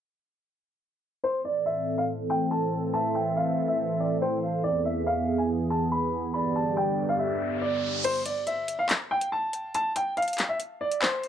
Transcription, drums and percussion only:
0, 0, Header, 1, 2, 480
1, 0, Start_track
1, 0, Key_signature, 0, "minor"
1, 0, Tempo, 425532
1, 1392, Time_signature, 4, 2, 24, 8
1, 12727, End_track
2, 0, Start_track
2, 0, Title_t, "Drums"
2, 9072, Note_on_c, 9, 42, 84
2, 9072, Note_on_c, 9, 49, 92
2, 9185, Note_off_c, 9, 42, 0
2, 9185, Note_off_c, 9, 49, 0
2, 9312, Note_on_c, 9, 42, 84
2, 9424, Note_off_c, 9, 42, 0
2, 9552, Note_on_c, 9, 42, 70
2, 9665, Note_off_c, 9, 42, 0
2, 9793, Note_on_c, 9, 42, 82
2, 9905, Note_off_c, 9, 42, 0
2, 10032, Note_on_c, 9, 39, 125
2, 10032, Note_on_c, 9, 42, 83
2, 10144, Note_off_c, 9, 39, 0
2, 10145, Note_off_c, 9, 42, 0
2, 10392, Note_on_c, 9, 42, 83
2, 10505, Note_off_c, 9, 42, 0
2, 10753, Note_on_c, 9, 42, 88
2, 10865, Note_off_c, 9, 42, 0
2, 10992, Note_on_c, 9, 42, 86
2, 11105, Note_off_c, 9, 42, 0
2, 11233, Note_on_c, 9, 42, 84
2, 11346, Note_off_c, 9, 42, 0
2, 11473, Note_on_c, 9, 42, 44
2, 11533, Note_off_c, 9, 42, 0
2, 11533, Note_on_c, 9, 42, 54
2, 11593, Note_off_c, 9, 42, 0
2, 11593, Note_on_c, 9, 42, 66
2, 11653, Note_off_c, 9, 42, 0
2, 11653, Note_on_c, 9, 42, 75
2, 11713, Note_off_c, 9, 42, 0
2, 11713, Note_on_c, 9, 39, 64
2, 11713, Note_on_c, 9, 42, 79
2, 11826, Note_off_c, 9, 39, 0
2, 11826, Note_off_c, 9, 42, 0
2, 11953, Note_on_c, 9, 42, 86
2, 12066, Note_off_c, 9, 42, 0
2, 12312, Note_on_c, 9, 42, 81
2, 12425, Note_off_c, 9, 42, 0
2, 12432, Note_on_c, 9, 39, 111
2, 12545, Note_off_c, 9, 39, 0
2, 12673, Note_on_c, 9, 42, 50
2, 12727, Note_off_c, 9, 42, 0
2, 12727, End_track
0, 0, End_of_file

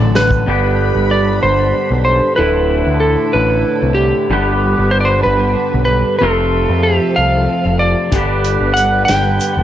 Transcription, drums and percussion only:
0, 0, Header, 1, 2, 480
1, 0, Start_track
1, 0, Tempo, 637620
1, 359, Time_signature, 6, 3, 24, 8
1, 7252, End_track
2, 0, Start_track
2, 0, Title_t, "Drums"
2, 116, Note_on_c, 9, 38, 101
2, 191, Note_off_c, 9, 38, 0
2, 230, Note_on_c, 9, 36, 91
2, 240, Note_on_c, 9, 82, 34
2, 306, Note_off_c, 9, 36, 0
2, 315, Note_off_c, 9, 82, 0
2, 6114, Note_on_c, 9, 42, 85
2, 6116, Note_on_c, 9, 36, 99
2, 6121, Note_on_c, 9, 82, 83
2, 6189, Note_off_c, 9, 42, 0
2, 6191, Note_off_c, 9, 36, 0
2, 6197, Note_off_c, 9, 82, 0
2, 6357, Note_on_c, 9, 42, 69
2, 6432, Note_off_c, 9, 42, 0
2, 6600, Note_on_c, 9, 42, 67
2, 6602, Note_on_c, 9, 82, 93
2, 6675, Note_off_c, 9, 42, 0
2, 6677, Note_off_c, 9, 82, 0
2, 6837, Note_on_c, 9, 42, 84
2, 6844, Note_on_c, 9, 38, 105
2, 6913, Note_off_c, 9, 42, 0
2, 6919, Note_off_c, 9, 38, 0
2, 7078, Note_on_c, 9, 82, 91
2, 7081, Note_on_c, 9, 42, 57
2, 7153, Note_off_c, 9, 82, 0
2, 7157, Note_off_c, 9, 42, 0
2, 7252, End_track
0, 0, End_of_file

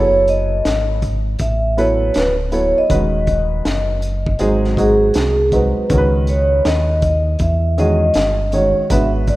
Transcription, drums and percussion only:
0, 0, Header, 1, 2, 480
1, 0, Start_track
1, 0, Tempo, 750000
1, 1857, Time_signature, 4, 2, 24, 8
1, 5991, End_track
2, 0, Start_track
2, 0, Title_t, "Drums"
2, 177, Note_on_c, 9, 42, 59
2, 241, Note_off_c, 9, 42, 0
2, 417, Note_on_c, 9, 38, 97
2, 418, Note_on_c, 9, 42, 70
2, 481, Note_off_c, 9, 38, 0
2, 482, Note_off_c, 9, 42, 0
2, 654, Note_on_c, 9, 42, 60
2, 655, Note_on_c, 9, 36, 76
2, 718, Note_off_c, 9, 42, 0
2, 719, Note_off_c, 9, 36, 0
2, 888, Note_on_c, 9, 42, 78
2, 894, Note_on_c, 9, 36, 83
2, 952, Note_off_c, 9, 42, 0
2, 958, Note_off_c, 9, 36, 0
2, 1139, Note_on_c, 9, 42, 60
2, 1203, Note_off_c, 9, 42, 0
2, 1370, Note_on_c, 9, 42, 79
2, 1381, Note_on_c, 9, 38, 98
2, 1434, Note_off_c, 9, 42, 0
2, 1445, Note_off_c, 9, 38, 0
2, 1612, Note_on_c, 9, 42, 73
2, 1676, Note_off_c, 9, 42, 0
2, 1855, Note_on_c, 9, 42, 97
2, 1856, Note_on_c, 9, 36, 115
2, 1919, Note_off_c, 9, 42, 0
2, 1920, Note_off_c, 9, 36, 0
2, 2093, Note_on_c, 9, 42, 64
2, 2096, Note_on_c, 9, 36, 81
2, 2157, Note_off_c, 9, 42, 0
2, 2160, Note_off_c, 9, 36, 0
2, 2338, Note_on_c, 9, 38, 93
2, 2338, Note_on_c, 9, 42, 71
2, 2402, Note_off_c, 9, 38, 0
2, 2402, Note_off_c, 9, 42, 0
2, 2574, Note_on_c, 9, 42, 65
2, 2638, Note_off_c, 9, 42, 0
2, 2729, Note_on_c, 9, 36, 93
2, 2793, Note_off_c, 9, 36, 0
2, 2809, Note_on_c, 9, 42, 76
2, 2873, Note_off_c, 9, 42, 0
2, 2972, Note_on_c, 9, 38, 33
2, 3036, Note_off_c, 9, 38, 0
2, 3054, Note_on_c, 9, 36, 77
2, 3061, Note_on_c, 9, 42, 63
2, 3118, Note_off_c, 9, 36, 0
2, 3125, Note_off_c, 9, 42, 0
2, 3289, Note_on_c, 9, 42, 78
2, 3299, Note_on_c, 9, 38, 97
2, 3353, Note_off_c, 9, 42, 0
2, 3363, Note_off_c, 9, 38, 0
2, 3533, Note_on_c, 9, 36, 87
2, 3533, Note_on_c, 9, 42, 73
2, 3597, Note_off_c, 9, 36, 0
2, 3597, Note_off_c, 9, 42, 0
2, 3774, Note_on_c, 9, 42, 100
2, 3776, Note_on_c, 9, 36, 114
2, 3838, Note_off_c, 9, 42, 0
2, 3840, Note_off_c, 9, 36, 0
2, 4014, Note_on_c, 9, 42, 64
2, 4078, Note_off_c, 9, 42, 0
2, 4257, Note_on_c, 9, 38, 99
2, 4257, Note_on_c, 9, 42, 66
2, 4321, Note_off_c, 9, 38, 0
2, 4321, Note_off_c, 9, 42, 0
2, 4493, Note_on_c, 9, 42, 65
2, 4496, Note_on_c, 9, 36, 76
2, 4557, Note_off_c, 9, 42, 0
2, 4560, Note_off_c, 9, 36, 0
2, 4729, Note_on_c, 9, 42, 76
2, 4734, Note_on_c, 9, 36, 87
2, 4793, Note_off_c, 9, 42, 0
2, 4798, Note_off_c, 9, 36, 0
2, 4980, Note_on_c, 9, 42, 64
2, 5044, Note_off_c, 9, 42, 0
2, 5209, Note_on_c, 9, 42, 77
2, 5219, Note_on_c, 9, 38, 95
2, 5273, Note_off_c, 9, 42, 0
2, 5283, Note_off_c, 9, 38, 0
2, 5453, Note_on_c, 9, 42, 70
2, 5517, Note_off_c, 9, 42, 0
2, 5696, Note_on_c, 9, 42, 106
2, 5697, Note_on_c, 9, 36, 124
2, 5760, Note_off_c, 9, 42, 0
2, 5761, Note_off_c, 9, 36, 0
2, 5935, Note_on_c, 9, 42, 67
2, 5938, Note_on_c, 9, 36, 77
2, 5991, Note_off_c, 9, 36, 0
2, 5991, Note_off_c, 9, 42, 0
2, 5991, End_track
0, 0, End_of_file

